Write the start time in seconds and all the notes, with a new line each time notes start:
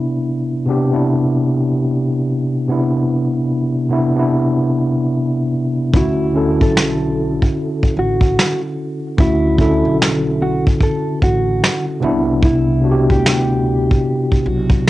Already playing: C3 B3 D4 E4
0.66 C3 B3 D4
0.70 G4
0.91 C3 B3 D4 E4
2.68 C3 B3 D4 E4
3.89 C3 B3 D4 E4
4.15 C3 B3 D4 E4
5.92 D2 D3 C#4 E4 F#4, kick
5.96 E4
6.33 D3 C#4 E4 A4
6.61 B1 A4, kick
6.77 finger snap, snare
7.42 kick
7.83 kick
7.97 A1 F#4
8.21 kick
8.39 finger snap, snare
9.17 D2 D3 C#4 E4 F#4, kick
9.57 D3 C#4 E4, kick
9.61 E4 A4
9.85 B1
10.02 finger snap, snare
10.42 F#4
10.67 kick
10.81 A4, kick
11.22 A1 F#4, kick
11.64 finger snap, snare
12.00 C2 C3 B3 D4 E4
12.43 E4, kick
12.81 C3 B3 D4
12.85 F#4
12.91 G4
13.10 D2 G4, kick
13.26 finger snap, snare
13.91 kick
14.32 kick
14.46 B1 F#4
14.70 kick